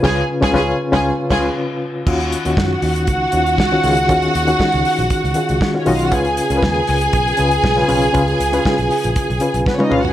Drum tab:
CC |x---------x-----|x---------------|----------------|----------------|
HH |----------------|-xxx--oxx-xx--ox|xxxx-xoxxxxx--ox|xxxx--oxxxxx--ox|
SD |o--oo--o--o-----|----o-------o---|----o-------o---|----o-------oo--|
T1 |----------------|----------------|----------------|----------------|
T2 |----------------|----------------|----------------|----------------|
FT |----------------|----------------|----------------|----------------|
BD |o--oo--o--o-----|o---o---o---o---|o---o---o---o---|o---o---o---o---|

CC |----------------|
HH |xxxx-xoxxxxx----|
SD |----o-------o---|
T1 |-------------o--|
T2 |--------------o-|
FT |---------------o|
BD |o---o---o---o---|